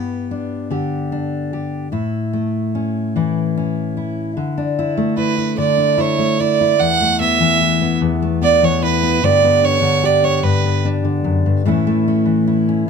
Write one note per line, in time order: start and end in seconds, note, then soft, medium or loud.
0.00 1.87 G2 medium
0.00 1.87 B3 medium
0.00 0.70 G4 medium
0.31 1.11 D4 soft
0.70 1.92 D3 medium
0.70 1.52 G4 medium
1.12 1.87 D4 soft
1.53 1.88 G4 soft
1.92 4.35 A2 medium
1.92 3.14 E4 medium
2.33 4.31 A3 soft
2.75 3.55 C#4 soft
3.16 4.31 E3 medium
3.16 3.96 E4 soft
3.57 4.32 C#4 soft
3.97 4.77 E4 soft
4.37 5.57 D3 medium
4.58 5.77 D4 medium
4.79 5.17 E4 medium
4.97 6.17 A3 medium
5.17 5.38 E4 medium
5.17 5.55 B4 medium
5.38 5.96 E4 soft
5.58 6.79 D3 medium
5.58 6.02 D5 medium
5.78 6.74 D4 soft
5.98 6.38 E4 medium
5.98 6.41 C#5 medium
6.18 6.74 A3 medium
6.40 6.59 E4 medium
6.40 6.81 D5 medium
6.61 7.60 E4 medium
6.80 8.00 E2 medium
6.80 7.19 F#5 medium
7.01 8.21 A3 medium
7.20 7.81 B3 medium
7.20 7.97 E5 medium
7.40 8.61 E3 medium
7.61 8.82 E4 medium
7.82 8.40 B3 medium
8.01 9.22 E2 medium
8.22 9.18 A3 medium
8.41 9.02 B3 medium
8.41 8.65 D5 medium
8.62 9.18 E3 medium
8.62 8.83 C#5 medium
8.83 9.23 E4 medium
8.83 9.25 B4 medium
9.03 9.22 B3 medium
9.22 10.42 G2 medium
9.22 9.80 D3 medium
9.22 9.43 B3 medium
9.22 9.62 D4 medium
9.22 10.02 G4 medium
9.22 9.66 D5 medium
9.44 10.63 B3 medium
9.63 10.23 D4 medium
9.63 10.06 C#5 medium
9.82 11.03 D3 medium
10.04 11.61 G4 medium
10.04 10.25 D5 medium
10.24 10.84 D4 soft
10.24 10.37 C#5 medium
10.37 10.45 C#5 soft
10.43 11.24 G2 medium
10.43 10.84 B4 medium
10.64 11.61 B3 soft
10.85 11.61 D4 medium
11.04 11.66 D3 medium
11.24 11.45 F#2 medium
11.46 11.66 G2 medium
11.65 12.87 A2 medium
11.65 12.24 E3 medium
11.65 11.87 A3 medium
11.65 12.07 C#4 medium
11.65 12.46 E4 medium
11.87 12.90 A3 medium
12.08 12.67 C#4 medium
12.26 12.90 E3 medium
12.47 12.90 E4 medium
12.69 12.90 C#4 medium